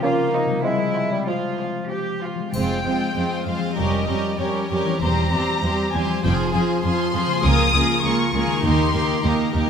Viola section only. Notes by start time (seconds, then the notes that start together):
0.02 C#4
0.63 C4
1.27 F3
1.90 C4
2.54 G#3 C4
2.85 G#3 C4
3.15 G#3 C4
3.46 G#3 C4
3.77 G3 C#4
4.08 G3 C#4
4.38 G3 C#4
4.70 G3 C#4
5.02 G3 C4
5.33 G3 C4
5.63 G3 C4
5.94 G3 C4
6.24 F3 F4
6.54 F3 F4
6.85 F3 F4
7.14 F3 F4
7.44 A#3 F4
7.75 A#3 F4
8.04 A#3 F4
8.34 A#3 F4
8.64 A#3 D#4
8.94 A#3 D#4
9.24 A#3 D#4
9.54 A#3 D#4